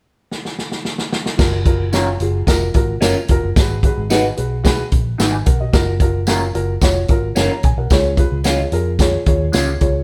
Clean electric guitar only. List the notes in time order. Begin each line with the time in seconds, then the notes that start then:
1.93 C#4 F4 A#4
3.01 C#4 F4 A#4
4.10 D#4 F#4 B4
5.18 D#4 F#4 B4
6.27 C#4 F4 A#4
7.36 C#4 F4 A#4
8.44 G#3 C#4 F4
9.52 G#3 C#4 F4